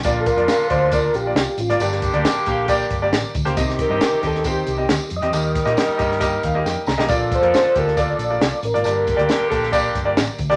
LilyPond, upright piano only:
<<
  \new Staff \with { instrumentName = "Upright piano" } { \time 4/4 \key bes \major \tempo 4 = 136 << { g''8 r2. r8 | r1 | r1 | r2 r8 f''8 g''8 bes''8 |
r1 | r1 | } \\ { <bes f' d''>8 r16 <bes f' d''>8 r16 <bes f' d''>16 r16 <bes f' d''>8 r16 <bes f' d''>8. r16 <bes f' d''>16 | <bes g' d''>8 r16 <bes g' d''>8 r16 <bes g' f''>16 r16 <bes g' d''>8 r16 <bes g' d''>8. r16 <bes g' c''>16 | <c' g' ees''>8 r16 <c' g' ees''>8 r16 <c' g' ees''>16 r16 <c' g' c''>8 r16 <c' g' ees''>8. r16 <c' g' ees''>16 | <bes g' ees''>8 r16 <bes g' ees''>8 r16 <bes g' ees''>16 r16 <bes g' ees''>8 r16 <bes g' ees''>8. r16 <bes g' ees''>16 |
<bes f' d''>8 r16 <bes f' bes'>8 r16 <bes f' g'>16 r16 <bes f' d''>8 r16 <bes f' d''>8. r16 <bes f' d''>16 | <bes g' d''>8 r16 <bes g' d''>8 r16 <bes g' a'>16 r16 <bes g' d''>8 r16 <bes g' d''>8. r16 <bes g' d''>16 | } >> }
  \new Staff \with { instrumentName = "Upright piano" } { \clef bass \time 4/4 \key bes \major bes,4. r2 r8 | g,4. r2 r8 | c4. r2 r8 | ees4. r2 r8 |
bes,4. r2 r8 | g,4. r2 r8 | }
>>